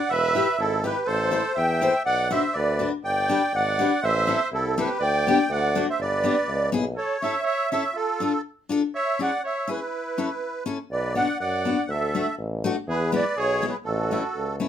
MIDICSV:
0, 0, Header, 1, 5, 480
1, 0, Start_track
1, 0, Key_signature, 1, "major"
1, 0, Tempo, 490998
1, 108, Time_signature, 2, 2, 24, 8
1, 6813, Key_signature, 3, "major"
1, 14355, End_track
2, 0, Start_track
2, 0, Title_t, "Accordion"
2, 0, Program_c, 0, 21
2, 0, Note_on_c, 0, 78, 92
2, 90, Note_on_c, 0, 76, 100
2, 114, Note_off_c, 0, 78, 0
2, 589, Note_on_c, 0, 69, 86
2, 593, Note_off_c, 0, 76, 0
2, 817, Note_off_c, 0, 69, 0
2, 828, Note_on_c, 0, 71, 80
2, 1045, Note_on_c, 0, 72, 96
2, 1046, Note_off_c, 0, 71, 0
2, 1533, Note_on_c, 0, 79, 91
2, 1545, Note_off_c, 0, 72, 0
2, 1980, Note_off_c, 0, 79, 0
2, 2011, Note_on_c, 0, 78, 102
2, 2258, Note_on_c, 0, 76, 93
2, 2268, Note_off_c, 0, 78, 0
2, 2477, Note_on_c, 0, 74, 80
2, 2501, Note_off_c, 0, 76, 0
2, 2826, Note_off_c, 0, 74, 0
2, 2978, Note_on_c, 0, 79, 98
2, 3471, Note_on_c, 0, 78, 88
2, 3474, Note_off_c, 0, 79, 0
2, 3943, Note_on_c, 0, 76, 98
2, 3958, Note_off_c, 0, 78, 0
2, 4385, Note_off_c, 0, 76, 0
2, 4441, Note_on_c, 0, 69, 78
2, 4681, Note_off_c, 0, 69, 0
2, 4690, Note_on_c, 0, 71, 80
2, 4906, Note_on_c, 0, 79, 97
2, 4914, Note_off_c, 0, 71, 0
2, 5391, Note_off_c, 0, 79, 0
2, 5394, Note_on_c, 0, 78, 88
2, 5720, Note_off_c, 0, 78, 0
2, 5769, Note_on_c, 0, 76, 90
2, 5870, Note_off_c, 0, 76, 0
2, 5877, Note_on_c, 0, 74, 93
2, 6553, Note_off_c, 0, 74, 0
2, 6818, Note_on_c, 0, 73, 80
2, 7064, Note_on_c, 0, 76, 92
2, 7071, Note_off_c, 0, 73, 0
2, 7279, Note_off_c, 0, 76, 0
2, 7294, Note_on_c, 0, 76, 99
2, 7524, Note_off_c, 0, 76, 0
2, 7544, Note_on_c, 0, 76, 89
2, 7782, Note_on_c, 0, 69, 79
2, 7783, Note_off_c, 0, 76, 0
2, 8225, Note_off_c, 0, 69, 0
2, 8749, Note_on_c, 0, 76, 90
2, 8995, Note_off_c, 0, 76, 0
2, 9018, Note_on_c, 0, 78, 90
2, 9217, Note_off_c, 0, 78, 0
2, 9248, Note_on_c, 0, 76, 69
2, 9484, Note_off_c, 0, 76, 0
2, 9491, Note_on_c, 0, 71, 68
2, 10399, Note_off_c, 0, 71, 0
2, 10674, Note_on_c, 0, 74, 77
2, 10898, Note_off_c, 0, 74, 0
2, 10917, Note_on_c, 0, 78, 102
2, 11129, Note_off_c, 0, 78, 0
2, 11144, Note_on_c, 0, 78, 77
2, 11634, Note_on_c, 0, 76, 84
2, 11639, Note_off_c, 0, 78, 0
2, 12076, Note_off_c, 0, 76, 0
2, 12612, Note_on_c, 0, 71, 76
2, 12828, Note_off_c, 0, 71, 0
2, 12862, Note_on_c, 0, 74, 87
2, 13083, Note_on_c, 0, 73, 93
2, 13086, Note_off_c, 0, 74, 0
2, 13389, Note_on_c, 0, 71, 58
2, 13403, Note_off_c, 0, 73, 0
2, 13460, Note_off_c, 0, 71, 0
2, 13536, Note_on_c, 0, 69, 66
2, 14234, Note_off_c, 0, 69, 0
2, 14355, End_track
3, 0, Start_track
3, 0, Title_t, "Trumpet"
3, 0, Program_c, 1, 56
3, 111, Note_on_c, 1, 71, 108
3, 555, Note_off_c, 1, 71, 0
3, 573, Note_on_c, 1, 64, 77
3, 803, Note_off_c, 1, 64, 0
3, 809, Note_on_c, 1, 67, 75
3, 1032, Note_off_c, 1, 67, 0
3, 1038, Note_on_c, 1, 69, 96
3, 1493, Note_off_c, 1, 69, 0
3, 1513, Note_on_c, 1, 76, 96
3, 1969, Note_off_c, 1, 76, 0
3, 2010, Note_on_c, 1, 74, 108
3, 2242, Note_off_c, 1, 74, 0
3, 2261, Note_on_c, 1, 72, 82
3, 2479, Note_off_c, 1, 72, 0
3, 2499, Note_on_c, 1, 71, 85
3, 2837, Note_off_c, 1, 71, 0
3, 2989, Note_on_c, 1, 74, 93
3, 3432, Note_off_c, 1, 74, 0
3, 3470, Note_on_c, 1, 74, 100
3, 3910, Note_off_c, 1, 74, 0
3, 3941, Note_on_c, 1, 72, 105
3, 4383, Note_off_c, 1, 72, 0
3, 4416, Note_on_c, 1, 64, 78
3, 4644, Note_off_c, 1, 64, 0
3, 4667, Note_on_c, 1, 67, 77
3, 4880, Note_off_c, 1, 67, 0
3, 4888, Note_on_c, 1, 74, 103
3, 5334, Note_off_c, 1, 74, 0
3, 5386, Note_on_c, 1, 74, 95
3, 5716, Note_off_c, 1, 74, 0
3, 5763, Note_on_c, 1, 72, 78
3, 5857, Note_off_c, 1, 72, 0
3, 5900, Note_on_c, 1, 71, 83
3, 6564, Note_off_c, 1, 71, 0
3, 6807, Note_on_c, 1, 69, 90
3, 7032, Note_off_c, 1, 69, 0
3, 7038, Note_on_c, 1, 73, 83
3, 7258, Note_off_c, 1, 73, 0
3, 7264, Note_on_c, 1, 73, 96
3, 7508, Note_off_c, 1, 73, 0
3, 7518, Note_on_c, 1, 73, 69
3, 7746, Note_off_c, 1, 73, 0
3, 7751, Note_on_c, 1, 65, 71
3, 8208, Note_off_c, 1, 65, 0
3, 8747, Note_on_c, 1, 73, 100
3, 8970, Note_off_c, 1, 73, 0
3, 9000, Note_on_c, 1, 74, 90
3, 9208, Note_off_c, 1, 74, 0
3, 9228, Note_on_c, 1, 73, 86
3, 9451, Note_off_c, 1, 73, 0
3, 9492, Note_on_c, 1, 64, 61
3, 10400, Note_off_c, 1, 64, 0
3, 10679, Note_on_c, 1, 71, 75
3, 10901, Note_off_c, 1, 71, 0
3, 10905, Note_on_c, 1, 74, 80
3, 11124, Note_off_c, 1, 74, 0
3, 11155, Note_on_c, 1, 74, 98
3, 11596, Note_off_c, 1, 74, 0
3, 11659, Note_on_c, 1, 69, 81
3, 12089, Note_off_c, 1, 69, 0
3, 12598, Note_on_c, 1, 68, 95
3, 12821, Note_off_c, 1, 68, 0
3, 12835, Note_on_c, 1, 71, 79
3, 13049, Note_off_c, 1, 71, 0
3, 13070, Note_on_c, 1, 68, 99
3, 13365, Note_off_c, 1, 68, 0
3, 13379, Note_on_c, 1, 68, 61
3, 13452, Note_off_c, 1, 68, 0
3, 13559, Note_on_c, 1, 66, 80
3, 14246, Note_off_c, 1, 66, 0
3, 14355, End_track
4, 0, Start_track
4, 0, Title_t, "Steel-string acoustic guitar"
4, 0, Program_c, 2, 25
4, 340, Note_on_c, 2, 64, 60
4, 350, Note_on_c, 2, 67, 61
4, 359, Note_on_c, 2, 71, 72
4, 452, Note_off_c, 2, 64, 0
4, 457, Note_off_c, 2, 67, 0
4, 462, Note_off_c, 2, 71, 0
4, 821, Note_on_c, 2, 64, 67
4, 828, Note_on_c, 2, 67, 59
4, 839, Note_on_c, 2, 71, 61
4, 932, Note_off_c, 2, 64, 0
4, 934, Note_off_c, 2, 67, 0
4, 941, Note_off_c, 2, 71, 0
4, 1285, Note_on_c, 2, 64, 64
4, 1293, Note_on_c, 2, 69, 62
4, 1298, Note_on_c, 2, 72, 74
4, 1401, Note_off_c, 2, 64, 0
4, 1405, Note_off_c, 2, 69, 0
4, 1408, Note_off_c, 2, 72, 0
4, 1774, Note_on_c, 2, 64, 65
4, 1779, Note_on_c, 2, 69, 58
4, 1787, Note_on_c, 2, 72, 78
4, 1884, Note_off_c, 2, 64, 0
4, 1887, Note_off_c, 2, 69, 0
4, 1891, Note_off_c, 2, 72, 0
4, 2254, Note_on_c, 2, 62, 68
4, 2259, Note_on_c, 2, 66, 67
4, 2271, Note_on_c, 2, 71, 73
4, 2363, Note_off_c, 2, 62, 0
4, 2366, Note_off_c, 2, 66, 0
4, 2372, Note_off_c, 2, 71, 0
4, 2728, Note_on_c, 2, 62, 58
4, 2736, Note_on_c, 2, 66, 53
4, 2748, Note_on_c, 2, 71, 56
4, 2842, Note_off_c, 2, 62, 0
4, 2846, Note_off_c, 2, 66, 0
4, 2851, Note_off_c, 2, 71, 0
4, 3220, Note_on_c, 2, 62, 71
4, 3230, Note_on_c, 2, 67, 50
4, 3235, Note_on_c, 2, 71, 75
4, 3330, Note_off_c, 2, 62, 0
4, 3331, Note_off_c, 2, 67, 0
4, 3336, Note_off_c, 2, 71, 0
4, 3704, Note_on_c, 2, 62, 66
4, 3713, Note_on_c, 2, 67, 60
4, 3723, Note_on_c, 2, 71, 72
4, 3810, Note_off_c, 2, 62, 0
4, 3814, Note_off_c, 2, 67, 0
4, 3819, Note_off_c, 2, 71, 0
4, 4176, Note_on_c, 2, 60, 69
4, 4186, Note_on_c, 2, 64, 64
4, 4193, Note_on_c, 2, 69, 59
4, 4284, Note_off_c, 2, 60, 0
4, 4290, Note_off_c, 2, 64, 0
4, 4291, Note_off_c, 2, 69, 0
4, 4670, Note_on_c, 2, 60, 78
4, 4675, Note_on_c, 2, 64, 56
4, 4681, Note_on_c, 2, 69, 75
4, 4770, Note_off_c, 2, 60, 0
4, 4770, Note_off_c, 2, 64, 0
4, 4775, Note_off_c, 2, 69, 0
4, 5153, Note_on_c, 2, 59, 69
4, 5163, Note_on_c, 2, 62, 62
4, 5168, Note_on_c, 2, 67, 65
4, 5250, Note_off_c, 2, 59, 0
4, 5255, Note_off_c, 2, 62, 0
4, 5255, Note_off_c, 2, 67, 0
4, 5624, Note_on_c, 2, 57, 70
4, 5628, Note_on_c, 2, 62, 66
4, 5644, Note_on_c, 2, 66, 72
4, 5725, Note_off_c, 2, 57, 0
4, 5727, Note_off_c, 2, 62, 0
4, 5735, Note_off_c, 2, 66, 0
4, 6095, Note_on_c, 2, 59, 71
4, 6107, Note_on_c, 2, 62, 59
4, 6113, Note_on_c, 2, 67, 62
4, 6201, Note_off_c, 2, 59, 0
4, 6206, Note_off_c, 2, 62, 0
4, 6209, Note_off_c, 2, 67, 0
4, 6571, Note_on_c, 2, 59, 73
4, 6576, Note_on_c, 2, 64, 70
4, 6587, Note_on_c, 2, 68, 86
4, 6680, Note_off_c, 2, 59, 0
4, 6683, Note_off_c, 2, 64, 0
4, 6688, Note_off_c, 2, 68, 0
4, 7061, Note_on_c, 2, 61, 60
4, 7075, Note_on_c, 2, 64, 55
4, 7084, Note_on_c, 2, 69, 54
4, 7166, Note_off_c, 2, 61, 0
4, 7174, Note_off_c, 2, 64, 0
4, 7175, Note_off_c, 2, 69, 0
4, 7545, Note_on_c, 2, 61, 55
4, 7552, Note_on_c, 2, 64, 60
4, 7559, Note_on_c, 2, 69, 60
4, 7648, Note_off_c, 2, 61, 0
4, 7652, Note_off_c, 2, 64, 0
4, 7655, Note_off_c, 2, 69, 0
4, 8017, Note_on_c, 2, 62, 65
4, 8028, Note_on_c, 2, 65, 59
4, 8039, Note_on_c, 2, 69, 65
4, 8124, Note_off_c, 2, 62, 0
4, 8130, Note_off_c, 2, 65, 0
4, 8135, Note_off_c, 2, 69, 0
4, 8498, Note_on_c, 2, 62, 68
4, 8508, Note_on_c, 2, 65, 69
4, 8522, Note_on_c, 2, 69, 88
4, 8604, Note_off_c, 2, 62, 0
4, 8609, Note_off_c, 2, 65, 0
4, 8616, Note_off_c, 2, 69, 0
4, 8984, Note_on_c, 2, 61, 58
4, 8993, Note_on_c, 2, 64, 53
4, 8999, Note_on_c, 2, 68, 69
4, 9087, Note_off_c, 2, 61, 0
4, 9092, Note_off_c, 2, 64, 0
4, 9095, Note_off_c, 2, 68, 0
4, 9459, Note_on_c, 2, 61, 59
4, 9468, Note_on_c, 2, 64, 51
4, 9472, Note_on_c, 2, 68, 66
4, 9564, Note_off_c, 2, 61, 0
4, 9569, Note_off_c, 2, 64, 0
4, 9571, Note_off_c, 2, 68, 0
4, 9950, Note_on_c, 2, 61, 60
4, 9955, Note_on_c, 2, 64, 59
4, 9961, Note_on_c, 2, 69, 65
4, 10051, Note_off_c, 2, 61, 0
4, 10053, Note_off_c, 2, 64, 0
4, 10056, Note_off_c, 2, 69, 0
4, 10418, Note_on_c, 2, 61, 74
4, 10427, Note_on_c, 2, 64, 50
4, 10431, Note_on_c, 2, 69, 75
4, 10527, Note_off_c, 2, 61, 0
4, 10529, Note_off_c, 2, 64, 0
4, 10533, Note_off_c, 2, 69, 0
4, 10903, Note_on_c, 2, 59, 61
4, 10911, Note_on_c, 2, 62, 58
4, 10921, Note_on_c, 2, 66, 62
4, 11010, Note_off_c, 2, 59, 0
4, 11015, Note_off_c, 2, 62, 0
4, 11020, Note_off_c, 2, 66, 0
4, 11391, Note_on_c, 2, 59, 62
4, 11400, Note_on_c, 2, 62, 55
4, 11407, Note_on_c, 2, 66, 55
4, 11495, Note_off_c, 2, 59, 0
4, 11500, Note_off_c, 2, 62, 0
4, 11504, Note_off_c, 2, 66, 0
4, 11874, Note_on_c, 2, 57, 63
4, 11880, Note_on_c, 2, 62, 59
4, 11890, Note_on_c, 2, 66, 58
4, 11977, Note_off_c, 2, 57, 0
4, 11980, Note_off_c, 2, 62, 0
4, 11985, Note_off_c, 2, 66, 0
4, 12358, Note_on_c, 2, 57, 82
4, 12368, Note_on_c, 2, 62, 66
4, 12374, Note_on_c, 2, 66, 89
4, 12460, Note_off_c, 2, 57, 0
4, 12462, Note_off_c, 2, 62, 0
4, 12467, Note_off_c, 2, 66, 0
4, 12827, Note_on_c, 2, 56, 69
4, 12834, Note_on_c, 2, 59, 61
4, 12842, Note_on_c, 2, 64, 74
4, 12934, Note_off_c, 2, 56, 0
4, 12937, Note_off_c, 2, 59, 0
4, 12941, Note_off_c, 2, 64, 0
4, 13313, Note_on_c, 2, 56, 59
4, 13319, Note_on_c, 2, 59, 63
4, 13325, Note_on_c, 2, 64, 68
4, 13417, Note_off_c, 2, 56, 0
4, 13420, Note_off_c, 2, 59, 0
4, 13423, Note_off_c, 2, 64, 0
4, 13796, Note_on_c, 2, 57, 56
4, 13800, Note_on_c, 2, 61, 51
4, 13810, Note_on_c, 2, 64, 68
4, 13900, Note_off_c, 2, 57, 0
4, 13902, Note_off_c, 2, 61, 0
4, 13907, Note_off_c, 2, 64, 0
4, 14271, Note_on_c, 2, 57, 66
4, 14277, Note_on_c, 2, 61, 55
4, 14286, Note_on_c, 2, 64, 69
4, 14355, Note_off_c, 2, 57, 0
4, 14355, Note_off_c, 2, 61, 0
4, 14355, Note_off_c, 2, 64, 0
4, 14355, End_track
5, 0, Start_track
5, 0, Title_t, "Tuba"
5, 0, Program_c, 3, 58
5, 100, Note_on_c, 3, 28, 99
5, 415, Note_off_c, 3, 28, 0
5, 574, Note_on_c, 3, 32, 95
5, 889, Note_off_c, 3, 32, 0
5, 1046, Note_on_c, 3, 33, 95
5, 1362, Note_off_c, 3, 33, 0
5, 1533, Note_on_c, 3, 40, 99
5, 1846, Note_off_c, 3, 40, 0
5, 2012, Note_on_c, 3, 35, 87
5, 2326, Note_off_c, 3, 35, 0
5, 2494, Note_on_c, 3, 38, 104
5, 2808, Note_off_c, 3, 38, 0
5, 2972, Note_on_c, 3, 31, 84
5, 3287, Note_off_c, 3, 31, 0
5, 3454, Note_on_c, 3, 32, 90
5, 3767, Note_off_c, 3, 32, 0
5, 3937, Note_on_c, 3, 33, 102
5, 4247, Note_off_c, 3, 33, 0
5, 4417, Note_on_c, 3, 36, 88
5, 4726, Note_off_c, 3, 36, 0
5, 4892, Note_on_c, 3, 38, 101
5, 5202, Note_off_c, 3, 38, 0
5, 5373, Note_on_c, 3, 38, 106
5, 5683, Note_off_c, 3, 38, 0
5, 5849, Note_on_c, 3, 31, 95
5, 6161, Note_off_c, 3, 31, 0
5, 6328, Note_on_c, 3, 37, 96
5, 6552, Note_off_c, 3, 37, 0
5, 6586, Note_on_c, 3, 35, 83
5, 6794, Note_off_c, 3, 35, 0
5, 10661, Note_on_c, 3, 35, 90
5, 10974, Note_off_c, 3, 35, 0
5, 11145, Note_on_c, 3, 42, 84
5, 11457, Note_off_c, 3, 42, 0
5, 11619, Note_on_c, 3, 38, 99
5, 11932, Note_off_c, 3, 38, 0
5, 12107, Note_on_c, 3, 33, 92
5, 12417, Note_off_c, 3, 33, 0
5, 12588, Note_on_c, 3, 40, 108
5, 12899, Note_off_c, 3, 40, 0
5, 13068, Note_on_c, 3, 35, 86
5, 13379, Note_off_c, 3, 35, 0
5, 13556, Note_on_c, 3, 33, 102
5, 13866, Note_off_c, 3, 33, 0
5, 14035, Note_on_c, 3, 37, 72
5, 14348, Note_off_c, 3, 37, 0
5, 14355, End_track
0, 0, End_of_file